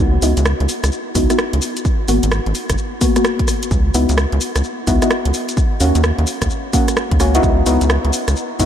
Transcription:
Already playing: B3 D#4 E4 F#4
0.00 C#2
0.22 C#2 B3 D#4 E4 F#4, open hi-hat, shaker
0.37 C#2, closed hi-hat, shaker
0.46 cross-stick, shaker
0.60 C#2, closed hi-hat
0.69 open hi-hat, shaker
0.84 C#2, cross-stick, closed hi-hat, shaker
0.92 shaker
1.15 C#2 B3 D#4 E4 F#4, kick, open hi-hat, shaker
1.30 B3 D#4 E4 F#4, cross-stick, closed hi-hat, shaker
1.39 cross-stick, shaker
1.53 C#2, closed hi-hat
1.62 open hi-hat, shaker
1.77 closed hi-hat, shaker
1.85 kick, shaker
2.08 G#1 A#3 B3 F#4, open hi-hat, shaker
2.23 G#1, closed hi-hat, shaker
2.32 cross-stick, shaker
2.46 G#1, closed hi-hat
2.55 open hi-hat, shaker
2.70 G#1, kick, cross-stick, closed hi-hat, shaker
2.78 shaker
3.01 A#3 B3 F#4, kick, open hi-hat, shaker
3.16 A#3 B3 F#4, cross-stick, closed hi-hat, shaker
3.25 cross-stick, shaker
3.39 kick, closed hi-hat
3.48 cross-stick, open hi-hat, shaker
3.63 closed hi-hat, shaker
3.71 C#2, kick, shaker
3.94 C#2 B3 D#4 E4 F#4, open hi-hat, shaker
4.09 C#2, closed hi-hat, shaker
4.18 cross-stick, shaker
4.32 C#2, closed hi-hat
4.41 open hi-hat, shaker
4.56 C#2, cross-stick, closed hi-hat, shaker
4.64 shaker
4.87 C#2 B3 D#4 E4 F#4, kick, open hi-hat, shaker
5.02 B3 D#4 E4 F#4, cross-stick, closed hi-hat, shaker
5.11 cross-stick, shaker
5.25 C#2, closed hi-hat
5.34 open hi-hat, shaker
5.49 closed hi-hat, shaker
5.57 kick, shaker
5.80 D#2 A#3 C#4 F#4, open hi-hat, shaker
5.95 D#2, closed hi-hat, shaker
6.04 cross-stick, shaker
6.18 D#2, closed hi-hat
6.27 open hi-hat, shaker
6.42 D#2, kick, cross-stick, closed hi-hat, shaker
6.50 shaker
6.73 A#3 C#4 F#4, kick, open hi-hat, shaker
6.88 cross-stick, closed hi-hat, shaker
6.97 cross-stick, shaker
7.11 D#2, kick, closed hi-hat
7.20 C#2 A#3 C#4 F#4, cross-stick, open hi-hat, shaker
7.35 B3 D#4 E4 F#4, closed hi-hat, shaker
7.43 C#2, kick, shaker
7.66 C#2 B3 D#4 E4 F#4, open hi-hat, shaker
7.81 C#2, closed hi-hat, shaker
7.90 cross-stick, shaker
8.05 C#2, closed hi-hat
8.13 open hi-hat, shaker
8.28 C#2, cross-stick, closed hi-hat, shaker
8.36 shaker
8.59 C#2 B3 D#4 E4 F#4, kick, open hi-hat, shaker

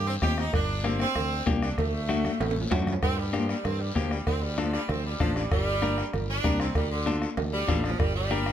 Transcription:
Already playing: G2
0.07 C4
0.22 D#2 C4 D#4 G4, bombo low, bombo rim, high conga, low timbale, short guiro
0.38 D#4, bombo rim, short guiro
0.53 G1 D4, bombo low, bombo rim, cowbell, high conga, long guiro
0.84 A#3 C4 D4 G4, bombo rim, high conga, short guiro
1.00 C4, bombo rim, short guiro
1.15 D2, bombo rim, cowbell, high conga, low conga, long guiro
1.46 C2 A#3 D4 G4, bombo low, bombo rim, high conga, low timbale, short guiro
1.62 D4, bombo rim, short guiro
1.78 D2 A3, bombo low, bombo rim, cowbell, high conga, low conga, long guiro
2.09 A3 D4 F#4, bombo rim, high conga, short guiro
2.25 bombo rim, high conga, short guiro
2.40 A1, bombo rim, cowbell, high conga, high timbale, long guiro
2.51 high timbale
2.56 high conga
2.61 low timbale
2.71 F#2 A3 D4 F#4, bombo low, bombo rim, low timbale, short guiro
2.82 low timbale
2.87 bombo rim, low conga, short guiro
2.93 low timbale
3.02 G2 C4, bombo low, bombo rim, cowbell, high conga, long guiro
3.18 G3
3.33 F3 A#3 D4 G4, bombo rim, high conga, short guiro
3.49 G3, bombo rim, short guiro
3.65 G2 C4, bombo rim, cowbell, high conga, low conga, long guiro
3.80 G3
3.95 D2 F3 A#3 D4 G4, bombo low, bombo rim, high conga, low timbale, short guiro
4.11 G3, bombo rim, short guiro
4.27 D2 C4, bombo low, bombo rim, cowbell, high conga, long guiro
4.42 G3
4.58 F3 D4 F4 A4, bombo rim, high conga, short guiro
4.73 G3, bombo rim, short guiro
4.89 D2 C4, bombo rim, cowbell, high conga, low conga, long guiro
5.06 G3
5.20 A1 F3 D4 F4 A4, bombo low, bombo rim, high conga, low conga, short guiro
5.36 G3, bombo rim, short guiro
5.51 G1 G3, bombo low, bombo rim, cowbell, long guiro
5.82 D4 G4 A#4, bombo rim, high conga, short guiro
5.98 bombo rim, short guiro
6.13 G1, bombo rim, cowbell, high conga, low conga, long guiro
6.30 D4
6.44 C2 D4 G4 A#4, bombo low, bombo rim, high conga, short guiro
6.60 C4, bombo rim, short guiro
6.75 D2 G3, bombo low, bombo rim, cowbell, high conga, long guiro
6.91 D3
7.06 D4 F4 A4, bombo rim, high conga, short guiro
7.22 bombo rim, short guiro
7.37 D2, bombo rim, cowbell, high conga, low conga, high timbale, long guiro
7.53 G3
7.68 A1 D4 F4 A4, bombo low, bombo rim, high conga, low conga, low timbale, short guiro
7.84 F3, bombo rim, short guiro
7.90 low timbale
7.99 G1 G3, bombo low, bombo rim, cowbell, high conga, long guiro
8.15 G3
8.31 D4 G4 A#4, bombo rim, high conga, short guiro
8.46 bombo rim, short guiro

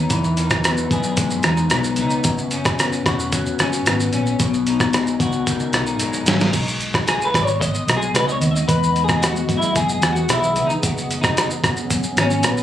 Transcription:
Already playing: B2 F#3 B3 D#4 G#4
0.10 E2 E3, kick, closed hi-hat, shaker
0.24 shaker
0.37 D#4, closed hi-hat, shaker
0.50 kick, cross-stick, shaker
0.64 B3, cross-stick, closed hi-hat, shaker
0.77 shaker
0.91 F#2 G#4, kick, closed hi-hat, shaker
1.03 shaker
1.17 G#3, kick, closed hi-hat, shaker
1.30 shaker
1.43 E2 D#4, cross-stick, closed hi-hat, shaker
1.57 shaker
1.70 B1 B3, cross-stick, closed hi-hat, shaker
1.84 shaker
1.96 C#2 D#4, closed hi-hat, shaker
2.10 shaker
2.24 F#1 F#2, kick, closed hi-hat, shaker
2.38 shaker
2.51 C#4, closed hi-hat, shaker
2.65 kick, cross-stick, shaker
2.79 B3, cross-stick, closed hi-hat, shaker
2.93 shaker
3.05 E1 F#4, kick, cross-stick, closed hi-hat, shaker
3.19 shaker
3.32 F#3, kick, closed hi-hat, shaker
3.46 shaker
3.59 F#1 C#4, cross-stick, closed hi-hat, shaker
3.73 shaker
3.86 G#1 B3, cross-stick, closed hi-hat, shaker
4.00 shaker
4.13 A#1 C#4, closed hi-hat, shaker
4.26 shaker
4.40 B1 B2, kick, closed hi-hat, shaker
4.54 shaker
4.67 D#4, closed hi-hat, shaker
4.80 kick, cross-stick, shaker
4.93 G#3, cross-stick, closed hi-hat, shaker
5.07 shaker
5.20 C#2 F#4, kick, closed hi-hat, shaker
5.32 shaker
5.47 D#3, kick, closed hi-hat, shaker
5.60 shaker
5.73 B1 D#4, cross-stick, closed hi-hat, shaker
5.87 shaker
5.99 F#1 G#3, closed hi-hat, shaker
6.13 shaker
6.26 G#1 C#4, snare, closed hi-hat, shaker
6.40 D#4, snare, shaker
6.53 B1 G#3 B3 D#5, kick, closed hi-hat, crash, shaker
6.68 shaker
6.81 closed hi-hat, shaker
6.94 kick, cross-stick, shaker
7.07 G#4, cross-stick, closed hi-hat, shaker
7.21 B4, shaker
7.34 G#1, kick, cross-stick, closed hi-hat, shaker
7.42 C#5
7.47 shaker
7.60 D#5, kick, closed hi-hat, shaker
7.74 shaker
7.87 B1, cross-stick, closed hi-hat, shaker
7.96 G#4
8.02 shaker
8.14 C#2 B4, cross-stick, closed hi-hat, shaker
8.28 D#5, shaker
8.32 C#5
8.40 D#2, closed hi-hat, shaker
8.51 D#5
8.56 shaker
8.68 E2 E3 G#4 B4, kick, closed hi-hat, shaker
8.83 shaker
8.96 closed hi-hat, shaker
9.04 G#4
9.08 kick, cross-stick, shaker
9.22 F#4, cross-stick, closed hi-hat, shaker
9.36 shaker
9.48 F#2, kick, closed hi-hat, shaker
9.57 E4
9.62 shaker
9.76 G#4, kick, closed hi-hat, shaker
9.89 shaker
10.01 E2, cross-stick, closed hi-hat, shaker
10.12 F#4, shaker
10.29 B1 E4, cross-stick, closed hi-hat, shaker
10.43 shaker
10.55 C#2, closed hi-hat, shaker
10.66 D#4, shaker
10.81 F#1 F#3 B3 C#4, kick, closed hi-hat, shaker
10.85 F#4
10.98 shaker
11.11 closed hi-hat, shaker
11.21 D#4, kick, cross-stick, shaker
11.37 cross-stick, closed hi-hat, shaker
11.50 shaker
11.64 E1, kick, cross-stick, closed hi-hat, shaker
11.76 shaker
11.90 kick, closed hi-hat, shaker
12.03 shaker
12.17 G#1 C#4, cross-stick, closed hi-hat, shaker
12.30 shaker
12.43 A#1 B3, cross-stick, closed hi-hat, shaker
12.57 shaker

